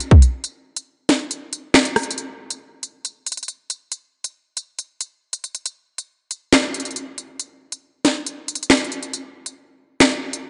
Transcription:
0.00 closed hi-hat
0.11 kick
0.22 closed hi-hat
0.44 closed hi-hat
0.77 closed hi-hat
1.09 snare, closed hi-hat
1.31 closed hi-hat
1.53 closed hi-hat
1.74 snare, clap
1.85 closed hi-hat
1.96 cross-stick, closed hi-hat, open hi-hat
2.03 closed hi-hat
2.11 closed hi-hat
2.18 closed hi-hat
2.50 closed hi-hat
2.83 closed hi-hat
3.05 closed hi-hat
3.27 closed hi-hat
3.32 closed hi-hat
3.37 closed hi-hat
3.43 closed hi-hat
3.48 closed hi-hat
3.70 closed hi-hat
3.92 closed hi-hat
4.24 closed hi-hat
4.57 closed hi-hat
4.79 closed hi-hat
5.01 closed hi-hat
5.33 closed hi-hat
5.44 closed hi-hat
5.55 closed hi-hat
5.66 closed hi-hat
5.98 closed hi-hat
6.31 closed hi-hat
6.53 snare, clap, closed hi-hat
6.74 closed hi-hat
6.80 closed hi-hat
6.85 closed hi-hat
6.91 closed hi-hat
6.96 closed hi-hat
7.18 closed hi-hat
7.40 closed hi-hat
7.72 closed hi-hat
8.05 snare, closed hi-hat
8.26 closed hi-hat
8.48 closed hi-hat
8.55 closed hi-hat
8.63 closed hi-hat
8.70 snare, clap, closed hi-hat
8.77 closed hi-hat
8.84 closed hi-hat
8.92 closed hi-hat
9.03 closed hi-hat
9.13 closed hi-hat
9.46 closed hi-hat
10.00 snare, clap, closed hi-hat
10.33 closed hi-hat

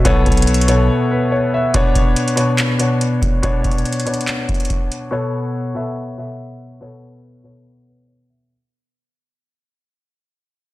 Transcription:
Already playing: B2 B3 A4 C#5 E5
0.05 B1 B2 B3 A4 C#5, kick, closed hi-hat
0.26 B1, kick, closed hi-hat
0.32 closed hi-hat
0.37 closed hi-hat
0.42 closed hi-hat
0.47 closed hi-hat
0.54 closed hi-hat
0.61 closed hi-hat
0.67 B2 B3 A4 C#5, closed hi-hat
1.11 B4
1.32 C#5
1.54 E5
1.74 B2 B3 D4 C#5, kick, closed hi-hat
1.95 kick, closed hi-hat
2.16 closed hi-hat
2.28 closed hi-hat
2.36 B2 B3 D4 C#5, closed hi-hat
2.58 clap, closed hi-hat
2.79 B2 B3 D4 C#5, closed hi-hat
3.01 closed hi-hat
3.22 kick, closed hi-hat
3.43 B2 B3 D4 C#5, kick, closed hi-hat
3.64 kick, closed hi-hat
3.71 closed hi-hat
3.78 closed hi-hat
3.85 closed hi-hat
3.92 closed hi-hat
4.00 closed hi-hat
4.06 B2 B3 D4 C#5, closed hi-hat
4.14 closed hi-hat
4.21 closed hi-hat
4.27 clap, closed hi-hat
4.49 kick, closed hi-hat
4.54 closed hi-hat
4.60 closed hi-hat
4.65 closed hi-hat
4.70 kick, closed hi-hat
4.92 closed hi-hat
5.11 B2 B3 A4 C#5
5.75 B2 B3 A4 E5
6.18 B2 B3 A4 E5
6.81 B2 B3 A4 C#5
7.43 B2 B3 A4 C#5
7.87 B4
8.08 C#5
8.30 E5

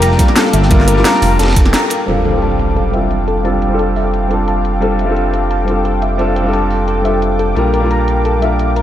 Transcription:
Already playing: F1 G3 A#3 D4 F4 A#4 F5 G5 D6
0.02 A#5, closed hi-hat, ride
0.11 snare
0.16 G3 A#3 D4, kick, snare, closed hi-hat, ride
0.21 F4 A#4
0.28 snare, ride
0.36 A4, snare, closed hi-hat, ride
0.45 snare
0.53 G1 E5, closed hi-hat, ride
0.63 snare
0.69 G3 A#3 D4 F4 A#4, kick, closed hi-hat, ride
0.80 snare
0.88 A#4, closed hi-hat, ride
0.94 G3 A#3 D4, snare
0.99 F4 A#4
1.05 A#5, snare, closed hi-hat, ride
1.14 snare
1.22 F1, open hi-hat, ride
1.39 F1 A4, snare, closed hi-hat, ride
1.43 snare, ride
1.48 snare, ride
1.52 snare, ride
1.56 kick, snare, closed hi-hat, ride
1.65 snare, ride
1.73 A#5, snare, closed hi-hat, ride
1.90 A#4, closed hi-hat, ride
2.06 F1 G3 C4 D4 F4 A4 F5 G5 D6, closed hi-hat, crash, impact
2.25 A4, closed hi-hat
2.31 G3 C4 D4
2.36 F4 A4
2.42 A5, closed hi-hat
2.59 closed hi-hat
2.76 A4, closed hi-hat
2.91 G3 C4 D4 E5, closed hi-hat
2.95 F4 A4
3.11 closed hi-hat
3.28 A4, closed hi-hat
3.43 G3 C4 D4 F4 A4 A5, closed hi-hat
3.62 closed hi-hat
3.68 G3 C4 D4
3.73 F4 A4
3.79 A4, closed hi-hat
3.96 E5, open hi-hat
4.14 closed hi-hat
4.27 G3 C4 D4 A4, closed hi-hat
4.32 F4 A4
4.48 A5, closed hi-hat
4.65 closed hi-hat
4.80 G3 C4 D4 F4 A4, closed hi-hat
4.99 E5, closed hi-hat
5.05 G3 C4 D4
5.10 F4 A4
5.16 closed hi-hat
5.34 A4, closed hi-hat
5.51 A5, closed hi-hat
5.64 G3 C4 D4, closed hi-hat
5.69 F4 A4
5.85 A4, closed hi-hat
6.02 E5, closed hi-hat
6.17 G3 C4 D4 F4 A4, closed hi-hat
6.36 A4, closed hi-hat
6.42 G3 C4 D4
6.47 F4 A4
6.53 A5, closed hi-hat
6.71 open hi-hat
6.88 A4, closed hi-hat
7.02 G3 C4 D4 E5, closed hi-hat
7.06 F4 A4
7.22 closed hi-hat
7.39 A4, closed hi-hat
7.55 A#1 G3 A#3 D4 F4 A#4 F5, closed hi-hat
7.74 A#4, closed hi-hat
7.80 G3 A#3 D4
7.84 F4 A#4
7.91 A#5, closed hi-hat
8.08 closed hi-hat
8.25 A4, closed hi-hat
8.39 G3 A#3 D4 E5, closed hi-hat
8.44 F4 A#4
8.59 closed hi-hat
8.76 A#4, closed hi-hat

